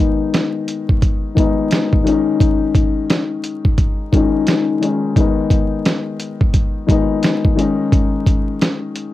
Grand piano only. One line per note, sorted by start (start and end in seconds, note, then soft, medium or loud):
0.00 0.83 D#3 medium
0.00 0.84 G#3 medium
0.00 0.85 B3 medium
0.00 0.86 D#4 medium
1.35 1.96 D#3 medium
1.35 1.97 G#3 medium
1.35 1.98 B3 medium
1.39 1.99 D#4 medium
2.04 3.24 D#3 medium
2.04 3.25 G#3 medium
2.04 3.26 C#4 medium
2.08 3.26 D#4 loud
4.12 4.73 D#3 medium
4.12 4.74 G#3 medium
4.12 4.74 C#4 medium
4.16 4.75 D#4 medium
4.80 5.11 D#3 medium
4.80 5.12 G#3 medium
4.80 5.13 C#4 medium
4.85 5.14 D#4 medium
5.16 6.35 D#3 medium
5.16 6.36 G#3 medium
5.16 6.37 B3 medium
5.20 6.37 D#4 medium
6.87 7.48 D#3 medium
6.87 7.49 G#3 medium
6.87 7.50 B3 medium
6.91 7.50 D#4 loud
7.56 8.76 D#3 medium
7.56 8.76 G#3 medium
7.56 8.77 C#4 medium
7.60 8.78 D#4 loud